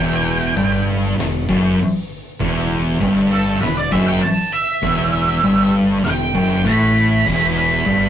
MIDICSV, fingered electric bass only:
0, 0, Header, 1, 2, 480
1, 0, Start_track
1, 0, Key_signature, 1, "minor"
1, 0, Tempo, 608519
1, 1888, Time_signature, 4, 2, 24, 8
1, 6383, End_track
2, 0, Start_track
2, 0, Title_t, "Fingered electric bass"
2, 0, Program_c, 0, 33
2, 0, Note_on_c, 0, 28, 94
2, 417, Note_off_c, 0, 28, 0
2, 447, Note_on_c, 0, 31, 95
2, 896, Note_off_c, 0, 31, 0
2, 938, Note_on_c, 0, 28, 83
2, 1157, Note_off_c, 0, 28, 0
2, 1177, Note_on_c, 0, 30, 99
2, 1396, Note_off_c, 0, 30, 0
2, 1896, Note_on_c, 0, 28, 102
2, 2341, Note_off_c, 0, 28, 0
2, 2380, Note_on_c, 0, 31, 96
2, 2823, Note_off_c, 0, 31, 0
2, 2852, Note_on_c, 0, 28, 89
2, 3074, Note_off_c, 0, 28, 0
2, 3094, Note_on_c, 0, 30, 102
2, 3315, Note_off_c, 0, 30, 0
2, 3808, Note_on_c, 0, 28, 97
2, 4257, Note_off_c, 0, 28, 0
2, 4286, Note_on_c, 0, 31, 96
2, 4736, Note_off_c, 0, 31, 0
2, 4774, Note_on_c, 0, 28, 80
2, 4994, Note_off_c, 0, 28, 0
2, 5007, Note_on_c, 0, 30, 90
2, 5230, Note_off_c, 0, 30, 0
2, 5254, Note_on_c, 0, 33, 96
2, 5698, Note_off_c, 0, 33, 0
2, 5732, Note_on_c, 0, 28, 96
2, 6177, Note_off_c, 0, 28, 0
2, 6207, Note_on_c, 0, 31, 97
2, 6383, Note_off_c, 0, 31, 0
2, 6383, End_track
0, 0, End_of_file